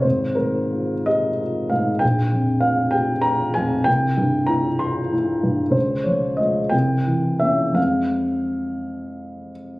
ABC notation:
X:1
M:6/8
L:1/8
Q:3/8=62
K:Fm
V:1 name="Grand piano"
c B2 e2 f | g2 f g b a | g2 b c' z2 | c d e g2 =e |
f4- f z |]
V:2 name="Grand piano" clef=bass
A,,, A,, F G F A,, | B,,, F,, F G F F,, | C,, G,, =E F E G,, | D,, F, [A,F] C,, =E, [B,D] |
[F,,F,A,C]6 |]